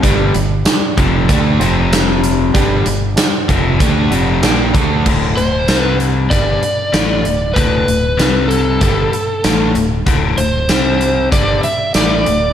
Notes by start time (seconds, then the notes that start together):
0.02 G1 G2 D3 G3 D4 G4 D5, kick, closed hi-hat
0.34 G1 G2 D3, closed hi-hat
0.65 D4 G4 D5, snare, closed hi-hat, tambourine
0.97 F1 F2 C3 F3, kick, closed hi-hat
1.28 D2 D3 A3 D4 G4 D5, kick, closed hi-hat
1.59 F1 F2 C3 F3 C4 F4 C5, closed hi-hat
1.93 snare, closed hi-hat, tambourine
2.24 closed hi-hat
2.54 G1 G2 D3 G3 D4 G4 D5, kick, closed hi-hat
2.85 G1 G2 D3, closed hi-hat
3.16 D4 G4 D5, snare, closed hi-hat, tambourine
3.48 F1 F2 C3 F3, kick, closed hi-hat
3.79 D2 D3 A3 D4 G4 D5, kick, closed hi-hat
4.11 F1 F2 C3 F3 F#5, closed hi-hat
4.42 A#1 A#2 F3 A#3 D4 G4 D5 G5, snare, closed hi-hat, tambourine
4.73 D2 D3 A3 D4 A5, kick, closed hi-hat
5.05 D1 D2 A2 D3, kick, crash
5.37 D1 D2 A2 C5, closed hi-hat
5.68 C2 C3 G3 C4, snare, closed hi-hat, tambourine
5.79 B4
6.00 closed hi-hat
6.30 G1 G2 D3 G3 D5, kick, closed hi-hat
6.62 muted overdriven electric guitar stroke, muted fingered electric bass stroke, closed hi-hat
6.92 A1 A2 E3 A3, snare, closed hi-hat, tambourine
7.24 D1 D2 A2, closed hi-hat
7.53 D1 D2 A2 D3 B4, kick, closed hi-hat
7.87 D1 D2 A2, closed hi-hat
8.17 C2 C3 G3 C4, snare, closed hi-hat, tambourine
8.48 A4, closed hi-hat
8.80 G1 G2 D3 G3, kick, closed hi-hat
9.12 muted overdriven electric guitar stroke, muted fingered electric bass stroke, closed hi-hat
9.44 A1 A2 E3 A3, snare, closed hi-hat, tambourine
9.75 D1 D2 A2, closed hi-hat
10.06 D1 D2 A2 D3, kick, closed hi-hat
10.38 D1 D2 A2 C5, closed hi-hat
10.69 C2 C3 G3 C4, snare, closed hi-hat, tambourine
11.01 closed hi-hat
11.32 G1 G2 D3 G3 D5, kick, closed hi-hat
11.63 E5, muted fingered electric bass stroke, muted overdriven electric guitar stroke, closed hi-hat
11.94 A1 A2 E3 A3 D5, snare, closed hi-hat, tambourine
12.26 D1 D2 A2, closed hi-hat